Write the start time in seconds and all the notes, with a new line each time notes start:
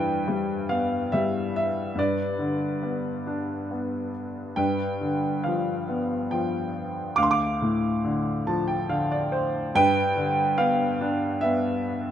Already playing: G2 E3 B4 G5
0.28 G3
0.69 B3 F5
1.12 G3 E5
1.56 E5
1.96 G2 B4 D5
2.39 D3
2.83 B3
3.27 D4
3.71 B3
4.56 G2 B4 G5
5.01 D3
5.44 F3 F5
5.88 B3
6.31 F3 G5
7.16 D2 F5 D6
7.23 C6
7.31 F5 D6
7.62 A2
8.04 D3
8.47 F3 A5
8.68 G5
8.89 D3 F5
9.12 D5
9.32 C5
9.75 G2 B4 G5
10.16 D3
10.58 B3 F5
11.01 D4
11.41 B3 E5